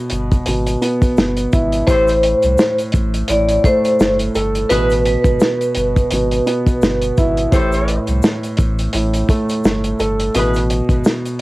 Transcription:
Already playing: B2
0.10 G1, closed hi-hat, shaker
0.32 kick, closed hi-hat, shaker
0.46 G#1 B2, closed hi-hat, shaker
0.67 closed hi-hat, shaker
0.81 B3, closed hi-hat, shaker
1.02 kick, closed hi-hat, shaker
1.17 G1, snare, shaker
1.37 closed hi-hat, shaker
1.52 G#1 E4, kick, closed hi-hat, shaker
1.72 closed hi-hat, shaker
1.87 A1 A2 G4 A4 C5, kick, closed hi-hat, shaker
2.08 closed hi-hat, shaker
2.23 closed hi-hat, shaker
2.42 C2, closed hi-hat, shaker
2.58 snare, shaker
2.78 closed hi-hat, shaker
2.92 A1, kick, closed hi-hat, shaker
3.14 closed hi-hat, shaker
3.28 A1 A2 D5, closed hi-hat, shaker
3.49 closed hi-hat, shaker
3.64 A3 C5, kick, closed hi-hat, shaker
3.85 closed hi-hat, shaker
4.00 G1, snare, shaker
4.19 closed hi-hat, shaker
4.35 G1 A4, closed hi-hat, shaker
4.55 closed hi-hat, shaker
4.69 A1 B2 E4 G#4 B4, closed hi-hat, shaker
4.90 closed hi-hat, shaker
5.05 B4, closed hi-hat, shaker
5.24 G#1, kick, closed hi-hat, shaker
5.40 snare, shaker
5.61 closed hi-hat, shaker
5.75 G1, closed hi-hat, shaker
5.96 kick, closed hi-hat, shaker
6.11 G#1 B2, closed hi-hat, shaker
6.31 closed hi-hat, shaker
6.46 B3, closed hi-hat, shaker
6.67 kick, closed hi-hat, shaker
6.82 G1, snare, shaker
7.02 closed hi-hat, shaker
7.17 G#1 E4, kick, closed hi-hat, shaker
7.37 closed hi-hat, shaker
7.52 A1 A2 G4 A4 C5, kick, closed hi-hat, shaker
7.72 closed hi-hat, shaker
7.88 closed hi-hat, shaker
8.07 C2, closed hi-hat, shaker
8.22 snare, shaker
8.43 closed hi-hat, shaker
8.57 A1, kick, closed hi-hat, shaker
8.79 closed hi-hat, shaker
8.93 A1 A2, closed hi-hat, shaker
9.14 closed hi-hat, shaker
9.29 A3, kick, closed hi-hat, shaker
9.49 closed hi-hat, shaker
9.64 G1, snare, shaker
9.84 closed hi-hat, shaker
9.99 G1 A4, closed hi-hat, shaker
10.20 closed hi-hat, shaker
10.35 A1 B2 E4 G#4 B4, closed hi-hat, shaker
10.54 closed hi-hat, shaker
10.70 closed hi-hat, shaker
10.89 G#1, kick, closed hi-hat, shaker
11.04 snare, shaker
11.25 closed hi-hat, shaker

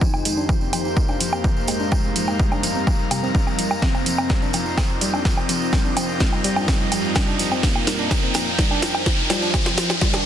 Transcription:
Already playing: F2 D#4 F4 A#4 C5, riser
0.01 F3 A#3 D#4 A#4, kick, tambourine
0.10 G4 C5, tambourine
0.14 low woodblock
0.25 G#3, open hi-hat, tambourine
0.37 D4 F5, tambourine
0.49 F3, kick, tambourine, low woodblock
0.61 C4, tambourine
0.73 F3, open hi-hat, tambourine, low woodblock
0.85 tambourine
0.96 G#3, kick, tambourine
1.08 D4, tambourine, low woodblock
1.17 F3 A#5, open hi-hat, tambourine
1.33 C4, tambourine, low woodblock
1.44 F3, kick, tambourine
1.56 tambourine
1.67 G#3, open hi-hat, tambourine, low woodblock
1.80 D4, tambourine
1.92 F3, kick, tambourine, low woodblock
2.04 C4, tambourine
2.16 F3, open hi-hat, tambourine
2.28 tambourine, low woodblock
2.39 G3 G#3, kick, tambourine
2.52 D4, tambourine, low woodblock
2.63 F3, open hi-hat, tambourine
2.75 C4, tambourine
2.87 F3, kick, tambourine, low woodblock
2.99 tambourine
3.11 C3, open hi-hat, tambourine, low woodblock
3.23 C4, tambourine
3.35 D4, kick, tambourine
3.47 C4, tambourine, low woodblock
3.58 F3, open hi-hat, tambourine
3.71 tambourine, low woodblock
3.82 F3 C4 G4 D5 D#5, kick, snare, tambourine
3.94 C4, tambourine, low woodblock
4.00 F4
4.06 F3, open hi-hat, tambourine
4.18 D#4, tambourine, low woodblock
4.29 G3, kick, snare, tambourine
4.42 D4, tambourine
4.53 F3 A#4, open hi-hat, tambourine, low woodblock
4.66 C4, tambourine
4.77 F3, kick, snare, tambourine, low woodblock
4.89 G5, tambourine
5.01 G3, open hi-hat, tambourine
5.14 D4, tambourine, low woodblock
5.25 F3, kick, snare, tambourine
5.37 C4, tambourine, low woodblock
5.49 F3 C4, open hi-hat, tambourine
5.62 tambourine
5.73 G3, kick, snare, tambourine, low woodblock
5.85 D4, tambourine
5.97 F3, open hi-hat, tambourine, low woodblock
6.09 C4, tambourine
6.20 F3 G3, kick, snare, tambourine
6.33 tambourine, low woodblock
6.44 G3, open hi-hat, tambourine
6.56 D4, tambourine, low woodblock
6.68 F3, kick, snare, tambourine
6.80 C4, tambourine
6.92 F3, open hi-hat, tambourine, low woodblock
7.05 tambourine
7.15 G3, kick, snare, tambourine, low woodblock
7.27 D4, tambourine
7.39 F3, open hi-hat, tambourine
7.51 C4, tambourine, low woodblock
7.63 F3 A#3 D#4 A#4 F5 G5, kick, snare, tambourine
7.76 tambourine, low woodblock
7.87 G3, snare, open hi-hat, tambourine
7.99 D4, tambourine
8.11 F3, kick, snare, tambourine, low woodblock
8.23 C4, tambourine
8.34 F3, snare, open hi-hat, tambourine, low woodblock
8.47 tambourine
8.59 G3, kick, snare, tambourine
8.71 D4, tambourine, low woodblock
8.82 F3, snare, open hi-hat, tambourine
8.95 C4, tambourine, low woodblock
9.06 F3, kick, snare, tambourine
9.19 tambourine
9.30 F3 G3, snare, open hi-hat, tambourine, low woodblock
9.42 D4, tambourine
9.54 F3 D#5, kick, snare, tambourine, low woodblock
9.66 C4, snare
9.78 F3, snare, open hi-hat, tambourine
9.90 snare, tambourine, low woodblock
10.01 D#3 G3, kick, snare, tambourine
10.14 D4, snare, low woodblock

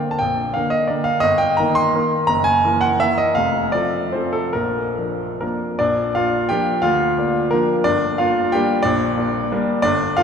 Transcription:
Already playing: D3 A#3 A#4 G5
0.11 A5
0.19 A#1 G5
0.54 D3 A#3 A#4 F5
0.70 D#5
0.87 D3 A#3 A#4 D5
1.04 F5
1.20 G1 D#5
1.38 G5
1.57 D#3 A#3 A#4 A#5
1.75 C6
1.95 D#3 A#3 A#4
2.27 F#1 A#5
2.44 G#5
2.64 E3 A#3 A#4
2.81 F#5
3.00 E3 A#3 A#4 E5
3.18 D#5
3.35 F1 F5
3.72 F3 C4 A4 D5
4.12 F3 C4 A4 C5
4.33 A4
4.53 A#1 A#4
4.98 F3 D4 A#4
5.41 F3 A#3 D4 A#4
5.79 A#1 D4 D5
6.15 A#3 D4 F4 F5
6.49 F3 A#3 D4 G4 G5
6.82 D2 F4 F5
7.18 A#3 D4
7.51 F3 A#3 D4 A#4
7.84 G1 D4 D5
8.18 A#3 D4 F4 F5
8.52 G3 A#3 D4 G4 G5
8.83 A#1 D4 D5
9.17 A#3 D4
9.52 G3 A#3 D4
9.82 G1 D4 D5
10.17 A#3 D4 F4 F5

